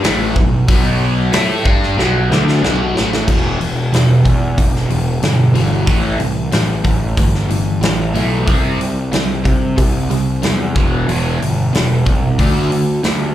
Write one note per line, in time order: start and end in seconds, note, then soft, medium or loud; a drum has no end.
0.02 0.34 A1 loud
0.02 0.34 A2 medium
0.02 0.35 E3 medium
0.02 0.35 A3 loud
0.02 snare loud
0.02 open hi-hat medium
0.36 0.66 B1 medium
0.36 0.62 B2 medium
0.36 0.62 F#3 medium
0.36 kick medium
0.68 1.29 B1 medium
0.68 1.32 B2 medium
0.68 1.32 F#3 loud
0.68 1.33 B3 loud
0.68 kick loud
0.68 open hi-hat medium
1.32 1.63 A2 medium
1.32 1.64 A3 medium
1.32 1.64 E4 loud
1.32 1.65 A4 medium
1.32 snare loud
1.32 open hi-hat medium
1.65 1.95 G2 medium
1.65 1.96 G3 loud
1.65 1.97 D4 loud
1.65 1.97 G4 loud
1.65 kick loud
1.83 snare soft
1.97 2.28 B1 loud
1.97 2.29 B2 medium
1.97 2.30 F#3 loud
1.97 2.30 B3 loud
1.97 snare medium
2.30 2.60 D2 loud
2.30 2.62 D3 medium
2.30 2.62 A3 loud
2.30 2.63 D4 medium
2.30 snare medium
2.48 snare medium
2.62 2.93 B1 medium
2.62 2.94 B2 medium
2.62 2.94 F#3 medium
2.62 2.95 B3 loud
2.62 snare medium
2.94 3.25 A1 medium
2.94 3.26 A2 medium
2.94 3.27 E3 medium
2.94 3.27 A3 loud
2.94 snare medium
3.13 snare medium
3.27 3.58 E1 medium
3.27 3.58 E2 medium
3.27 3.58 B2 loud
3.27 3.59 E3 medium
3.27 kick loud
3.27 crash medium
3.59 3.91 E1 medium
3.59 3.89 E2 medium
3.59 3.89 B2 medium
3.59 open hi-hat soft
3.92 4.23 E1 medium
3.92 4.21 E2 medium
3.92 4.22 B2 medium
3.92 snare medium
3.92 open hi-hat medium
4.25 4.54 E2 medium
4.25 4.56 E2 medium
4.25 4.54 B2 medium
4.25 kick medium
4.25 open hi-hat soft
4.58 4.88 E1 medium
4.58 4.87 E2 medium
4.58 4.87 B2 medium
4.58 kick medium
4.58 open hi-hat medium
4.76 snare soft
4.90 5.21 E1 medium
4.90 5.19 E2 medium
4.90 5.19 B2 medium
4.90 open hi-hat soft
5.22 5.53 G1 medium
5.22 5.51 E2 medium
5.22 5.52 B2 medium
5.22 snare medium
5.22 open hi-hat medium
5.54 5.85 G1 medium
5.54 5.85 E2 medium
5.54 5.85 B2 medium
5.54 5.86 E3 medium
5.54 open hi-hat soft
5.86 6.18 A1 medium
5.86 6.17 A2 medium
5.86 6.18 E3 loud
5.86 6.18 A3 medium
5.86 kick loud
5.86 open hi-hat medium
6.19 6.50 C2 medium
6.19 6.48 A2 medium
6.19 6.49 E3 medium
6.19 open hi-hat soft
6.52 6.83 A1 medium
6.52 6.81 A2 medium
6.52 6.82 E3 medium
6.52 snare loud
6.52 open hi-hat medium
6.84 7.15 A1 medium
6.84 7.14 A2 medium
6.84 7.14 E3 medium
6.84 kick medium
6.84 open hi-hat soft
7.17 7.79 G1 medium
7.17 7.47 A2 medium
7.17 7.47 E3 medium
7.17 kick medium
7.17 open hi-hat medium
7.35 snare soft
7.49 7.79 A2 medium
7.49 7.79 E3 medium
7.49 open hi-hat soft
7.81 8.13 A1 medium
7.81 8.11 A2 medium
7.81 8.11 E3 medium
7.81 snare loud
7.81 open hi-hat medium
8.14 8.45 B1 medium
8.14 8.45 A2 medium
8.14 8.45 E3 medium
8.14 8.46 A3 medium
8.14 open hi-hat soft
8.47 8.78 C2 medium
8.47 8.78 C3 medium
8.47 8.78 G3 loud
8.47 8.79 C4 loud
8.47 kick loud
8.47 open hi-hat medium
8.79 9.11 C2 medium
8.79 9.09 C3 medium
8.79 9.09 G3 medium
8.79 open hi-hat medium
9.12 9.43 C2 medium
9.12 9.42 C3 medium
9.12 9.42 G3 medium
9.12 snare loud
9.12 open hi-hat medium
9.44 9.74 C3 medium
9.44 9.76 C3 medium
9.44 9.74 G3 medium
9.44 kick medium
9.44 open hi-hat soft
9.77 10.08 C2 medium
9.77 10.06 C3 medium
9.77 10.07 G3 medium
9.77 kick medium
9.77 open hi-hat medium
10.10 10.41 C2 medium
10.10 10.39 C3 medium
10.10 10.40 G3 medium
10.10 open hi-hat soft
10.42 10.74 E2 medium
10.42 10.72 C3 medium
10.42 10.72 G3 medium
10.42 snare medium
10.42 open hi-hat medium
10.75 11.06 E1 medium
10.75 11.06 E2 medium
10.75 11.06 B2 medium
10.75 11.07 E3 medium
10.75 kick medium
10.75 open hi-hat soft
11.08 11.38 E1 medium
11.08 11.39 E2 medium
11.08 11.39 B2 loud
11.08 11.39 E3 loud
11.08 open hi-hat medium
11.40 11.71 G1 medium
11.40 11.70 E2 medium
11.40 11.70 B2 medium
11.40 open hi-hat soft
11.73 12.04 E1 medium
11.73 12.02 E2 medium
11.73 12.02 B2 medium
11.73 snare loud
11.73 open hi-hat medium
12.05 12.37 C2 medium
12.05 12.35 E2 medium
12.05 12.35 B2 medium
12.05 kick medium
12.05 open hi-hat soft
12.38 13.00 D2 medium
12.38 12.69 D3 medium
12.38 12.69 A3 medium
12.38 12.70 D4 medium
12.38 kick medium
12.38 open hi-hat medium
12.70 13.00 D3 medium
12.70 13.00 A3 medium
12.70 open hi-hat soft
13.03 13.34 D2 medium
13.03 13.33 D3 medium
13.03 13.33 A3 medium
13.03 snare loud
13.03 open hi-hat medium